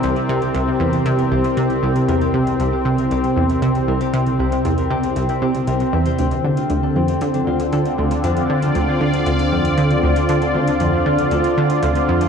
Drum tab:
HH |xx-xx--xxx-xxx-x|xx-xx--xxx-xxx-x|xx-xxx-xxx-xxx-x|xx-xx--xxx-xxx-x|
T1 |---o----o----o--|--o----o----o---|-o----o----o----|----o----o----o-|

HH |xx-xx--xxx-xxx-x|xx-xx--xxx-xxx-x|
T1 |---o----o----o--|--o----o----o---|